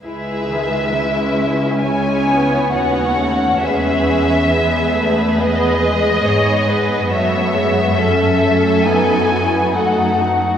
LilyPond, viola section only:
\new Staff \with { instrumentName = "Viola section" } { \time 4/4 \key cis \minor \tempo 4 = 68 << { e'8 dis8 cis'2. | cis'4 b2 b4~ | b4 cis'4 dis'8 e'8 dis'4 | } \\ { gis4 gis4 gis8 b8 b8 a8 | gis4 gis8 a8 b8 gis8 b4 | a8 gis8 a4 b4 a4 | } >> }